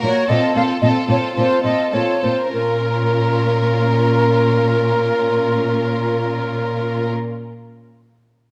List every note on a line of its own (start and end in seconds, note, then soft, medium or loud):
0.02 0.11 A#2 soft
0.02 0.29 A#3 soft
0.02 0.29 F#4 soft
0.02 0.28 A#4 soft
0.02 0.31 C#5 medium
0.28 0.38 A#2 soft
0.28 0.54 C4 soft
0.28 0.54 F4 soft
0.28 0.54 A4 soft
0.28 0.56 D#5 medium
0.55 0.64 A#2 soft
0.55 0.82 C4 soft
0.55 0.79 F4 soft
0.55 0.81 A4 soft
0.55 0.62 F5 medium
0.80 0.91 A#2 soft
0.80 1.09 C4 soft
0.80 1.07 F4 soft
0.80 1.09 A4 soft
0.80 0.88 D#5 medium
1.08 1.17 A#2 soft
1.08 1.36 C4 soft
1.08 1.34 F4 soft
1.08 1.35 A4 soft
1.08 1.17 C#5 soft
1.35 1.45 A#2 soft
1.35 1.63 C4 soft
1.35 1.63 F4 soft
1.35 1.62 A4 soft
1.35 1.63 C5 soft
1.63 1.73 A#2 soft
1.63 1.92 C4 soft
1.63 1.93 F4 soft
1.63 1.92 A4 soft
1.63 1.95 D#5 soft
1.93 2.01 A#2 soft
1.93 2.21 C4 soft
1.93 2.22 F4 soft
1.93 2.21 A4 soft
1.93 2.25 C#5 soft
2.22 2.31 A#2 soft
2.22 2.51 C4 soft
2.22 2.50 F4 soft
2.22 2.51 A4 soft
2.22 2.52 C5 soft
2.50 7.13 A#2 soft
2.50 7.11 C#4 soft
2.50 7.12 F4 soft
2.50 7.10 A#4 soft
2.50 7.13 A#4 soft